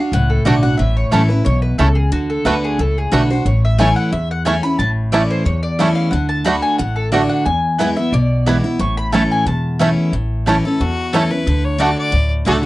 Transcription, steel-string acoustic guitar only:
0.00 0.12 D4 soft
0.00 0.11 F#4 medium
0.13 0.76 A2 loud
0.45 0.62 D3 medium
0.45 0.63 A3 medium
0.45 0.63 D4 medium
0.45 0.62 F#4 medium
0.63 0.79 D4 medium
0.63 0.78 F#4 medium
0.79 1.43 A2 medium
1.12 1.29 E3 loud
1.12 1.30 A3 medium
1.12 1.30 C#4 medium
1.12 1.29 E4 medium
1.30 1.46 C#4 soft
1.30 1.45 E4 medium
1.46 1.78 B2 medium
1.79 2.11 C#3 medium
2.12 2.44 D3 medium
2.45 2.77 D3 medium
2.45 2.78 A3 medium
2.45 2.78 D4 loud
2.45 2.78 F#4 loud
2.79 3.43 A2 loud
3.12 3.29 D3 medium
3.12 3.29 A3 medium
3.12 3.30 D4 loud
3.12 3.29 F#4 medium
3.31 3.47 D4 medium
3.31 3.45 F#4 medium
3.46 4.09 A2 medium
3.78 4.11 E3 medium
3.78 4.11 A3 loud
3.78 4.11 C#4 medium
3.78 4.12 E4 medium
4.12 4.76 E2 medium
4.45 4.62 E3 medium
4.45 4.63 A3 medium
4.45 4.63 C#4 medium
4.45 4.62 E4 medium
4.63 4.80 C#4 soft
4.63 4.79 E4 medium
4.80 5.43 A2 medium
5.12 5.44 E3 medium
5.12 5.45 A3 medium
5.12 5.45 C#4 medium
5.12 5.45 E4 loud
5.46 6.10 E2 medium
5.79 6.11 E3 medium
5.79 6.12 A3 medium
5.79 6.12 C#4 loud
5.79 6.12 E4 loud
6.13 6.43 D3 medium
6.45 6.77 D3 medium
6.45 6.78 A3 medium
6.45 6.78 D4 loud
6.45 6.78 F#4 loud
6.79 7.43 A2 loud
7.12 7.44 D3 medium
7.12 7.45 A3 medium
7.12 7.45 D4 medium
7.12 7.45 F#4 medium
7.46 8.10 E2 medium
7.79 7.96 E3 medium
7.79 7.97 G#3 loud
7.79 7.97 B3 medium
7.79 7.96 E4 medium
7.97 8.13 B3 soft
7.97 8.12 E4 medium
8.14 8.77 B2 medium
8.46 8.63 E3 medium
8.46 8.64 G#3 medium
8.46 8.64 B3 medium
8.46 8.63 E4 loud
8.64 8.80 B3 soft
8.64 8.79 E4 medium
8.79 9.43 A2 medium
9.12 9.45 E3 medium
9.12 9.45 A3 medium
9.12 9.45 C#4 loud
9.12 9.46 E4 medium
9.47 10.10 E2 medium
9.79 10.12 E3 medium
9.79 10.12 A3 medium
9.79 10.13 C#4 loud
9.79 10.13 E4 loud
10.13 10.77 A2 medium
10.47 10.64 E3 medium
10.47 10.64 A3 medium
10.47 10.65 C#4 medium
10.47 10.64 E4 medium
10.65 10.81 C#4 soft
10.65 10.80 E4 medium
10.81 11.44 E2 medium
11.13 11.30 E3 medium
11.13 11.31 A3 medium
11.13 11.31 C#4 loud
11.13 11.30 E4 loud
11.31 11.48 C#4 soft
11.31 11.46 E4 medium
11.47 11.77 D3 medium
11.78 12.11 D3 medium
11.78 12.12 A3 medium
11.78 12.12 D4 medium
11.78 12.12 F#4 loud
12.12 12.66 A2 medium
12.45 12.63 D3 medium
12.45 12.64 A3 medium
12.45 12.64 D4 medium
12.45 12.62 F#4 loud

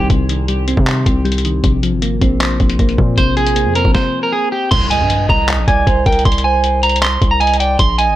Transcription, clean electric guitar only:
3.18 3.34 C5 medium
3.37 3.73 G#4 medium
3.76 3.92 A#4 medium
3.95 4.22 C5 medium
4.23 4.32 A#4 medium
4.32 4.49 G#4 medium
4.52 4.69 G4 medium
4.71 4.88 C6 loud
4.90 5.27 G#5 medium
5.30 5.46 A#5 medium
5.68 6.04 G#5 medium
6.06 6.23 G5 medium
6.25 6.42 C6 medium
6.44 6.81 G#5 medium
6.83 7.00 A#5 medium
7.02 7.29 C6 medium
7.31 7.39 A#5 medium
7.40 7.57 G#5 loud
7.60 7.77 G5 medium
7.79 7.96 C6 loud
7.98 8.16 G#5 medium

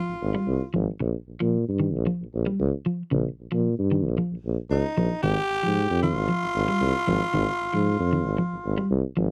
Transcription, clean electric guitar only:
0.00 0.11 F3 medium
0.35 0.51 G3 medium
0.74 0.90 F3 medium
1.00 muted clean electric guitar stroke loud
1.40 1.57 F3 medium
1.80 1.96 D#3 medium
2.07 2.23 F3 medium
2.46 2.62 G3 medium
2.86 3.02 F3 medium
3.11 3.28 C#3 loud
3.52 3.68 F3 medium
3.91 4.07 D#3 medium
4.18 4.34 F3 medium
4.97 5.13 F3 medium
5.23 5.39 D#3 loud
5.63 5.79 F3 medium
6.03 6.19 D#3 medium
6.29 6.45 F3 medium
6.68 6.84 G3 medium
7.07 7.23 F3 medium
7.34 7.50 D#3 loud
7.73 7.89 F3 medium
8.13 8.29 D#3 medium
8.38 8.54 F3 medium
8.78 8.94 G3 medium
9.17 9.31 F3 medium

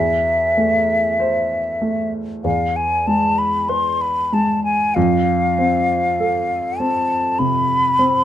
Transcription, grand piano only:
0.00 2.41 E2 medium
0.57 1.57 A3 soft
1.20 2.20 C5 soft
1.82 2.44 A3 soft
2.44 4.91 E2 soft
3.07 4.07 G#3 soft
3.69 4.70 B4 soft
4.32 4.96 G#3 soft
4.96 7.36 F2 medium
5.59 6.56 C4 soft
6.20 7.16 A4 soft
6.80 7.75 C4 soft
7.39 8.24 C3 soft
7.99 8.24 C4 soft

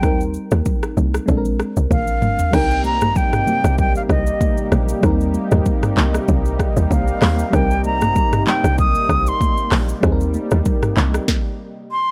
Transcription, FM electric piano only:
0.01 1.24 G3 medium
0.01 1.25 C4 medium
0.01 1.26 D#4 medium
0.05 1.27 A#4 medium
1.26 2.50 G#3 medium
1.26 2.50 C4 medium
1.26 2.51 D4 medium
1.31 1.37 A4 medium
1.37 2.55 A#4 medium
2.51 4.98 G3 medium
2.51 4.99 C4 medium
2.51 5.00 D#4 medium
2.56 5.01 A#4 medium
5.01 7.48 G3 medium
5.01 7.49 C4 medium
5.01 7.50 D#4 medium
5.06 7.51 A#4 medium
7.51 9.98 G3 medium
7.51 9.99 C4 medium
7.51 10.00 D#4 medium
7.56 10.00 A#4 medium
10.01 11.24 G3 medium
10.01 11.25 C4 medium
10.01 11.26 D#4 medium
10.06 10.12 G#4 medium
10.12 11.30 A#4 medium

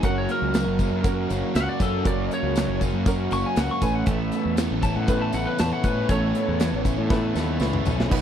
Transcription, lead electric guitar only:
0.05 0.16 F#5 medium
0.18 0.29 C#5 medium
0.32 1.28 A#4 medium
1.56 1.68 F#5 medium
1.69 1.81 D5 loud
1.82 2.06 A4 medium
2.07 2.31 D5 medium
2.34 2.81 C#5 loud
3.33 3.45 C#6 medium
3.46 3.59 G#5 medium
3.59 3.71 F#5 medium
3.71 3.83 C#6 medium
3.83 3.95 G#5 medium
3.95 4.06 F#5 medium
4.06 4.56 E5 loud
4.83 4.96 A5 loud
4.96 5.08 F#5 medium
5.08 5.21 B4 medium
5.22 5.34 A5 loud
5.34 5.46 F#5 loud
5.47 5.59 B4 loud
5.60 5.72 A5 loud
5.73 5.85 F#5 medium
5.84 6.09 B4 medium
6.09 7.07 C#5 loud

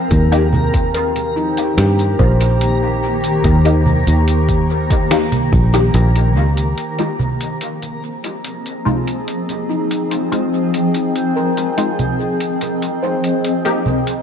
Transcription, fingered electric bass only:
0.11 1.74 D#2 medium
1.77 2.14 G2 medium
2.19 3.40 A#1 medium
3.44 4.03 D#2 medium
4.07 5.52 D#2 medium
5.53 5.89 A#1 loud
5.94 6.36 A#1 loud
6.36 6.73 C#2 loud

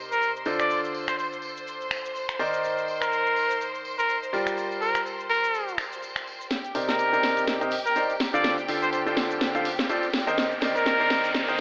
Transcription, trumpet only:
0.11 0.32 A#4 medium
0.60 0.81 D5 medium
1.08 1.15 C5 medium
1.18 1.27 C5 medium
3.02 3.69 A#4 loud
3.98 4.19 A#4 medium
4.81 5.03 A#4 medium
5.30 5.78 A#4 medium
6.89 7.56 A#4 medium
7.85 8.07 A#4 medium
8.34 8.55 D5 medium
8.82 8.89 C5 medium
8.93 9.01 C5 medium
10.76 11.43 A#4 loud

